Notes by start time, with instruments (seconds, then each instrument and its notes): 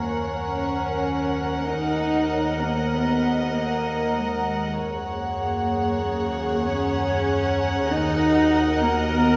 Already playing: synth drone D#2, double bass section F#2, cello section A#3, viola section A#4, glass harmonica A#4 F#5 G#5, violin section C#5 F#5, celesta E5
0.47 cello section C#4
1.70 double bass section D#2, cello section D#4, violin section D#5, glass harmonica A#5
2.33 celesta C#5
2.63 cello section A#3
2.94 cello section B3
3.56 cello section A#3
4.17 cello section G#3
4.48 celesta F#5
4.79 synth drone D#2, double bass section F#2, viola section G#4, glass harmonica G#4 F#5, violin section C#5 F#5
5.10 cello section A#3
5.41 celesta F#5
6.03 cello section A#3
6.66 cello section C#4
7.58 celesta G#5
7.89 double bass section D#2, cello section D#4, glass harmonica F#4 A#5, viola section A#4, violin section D#5
8.81 cello section A#3
9.13 cello section B3